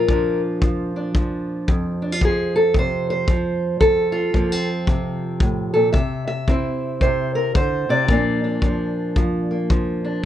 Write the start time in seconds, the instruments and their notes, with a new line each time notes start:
Already playing: steel-string acoustic guitar A#2 F4 A#4
0.08 steel-string acoustic guitar F3 D4, kick
0.62 steel-string acoustic guitar F3, kick
0.96 steel-string acoustic guitar D4
1.15 steel-string acoustic guitar F3, kick
1.68 steel-string acoustic guitar F2, kick
2.02 steel-string acoustic guitar D4
2.12 steel-string acoustic guitar F4
2.21 steel-string acoustic guitar F3 G#4, kick
2.56 steel-string acoustic guitar A4
2.74 steel-string acoustic guitar C3, kick
2.79 steel-string acoustic guitar C5
3.10 steel-string acoustic guitar C5
3.28 steel-string acoustic guitar F3, kick
3.80 steel-string acoustic guitar F2 A4, kick
4.12 steel-string acoustic guitar F4
4.34 steel-string acoustic guitar F3 A#3, kick
4.52 steel-string acoustic guitar C4
4.87 steel-string acoustic guitar C3, kick
5.40 steel-string acoustic guitar A2, kick
5.74 steel-string acoustic guitar A#2 A4
5.93 steel-string acoustic guitar C3 E5, kick
6.28 steel-string acoustic guitar E5
6.48 steel-string acoustic guitar C4 E4, kick
7.01 steel-string acoustic guitar C3 C5, kick
7.35 steel-string acoustic guitar A#4
7.55 steel-string acoustic guitar D3 C5, kick
7.89 steel-string acoustic guitar C3 D5
8.08 steel-string acoustic guitar A#2 F3 A#3 D4, kick
8.44 steel-string acoustic guitar D4
8.62 steel-string acoustic guitar F3 D4, kick
9.16 steel-string acoustic guitar F3, kick
9.51 steel-string acoustic guitar A#3
9.70 steel-string acoustic guitar F3, kick
10.05 steel-string acoustic guitar D4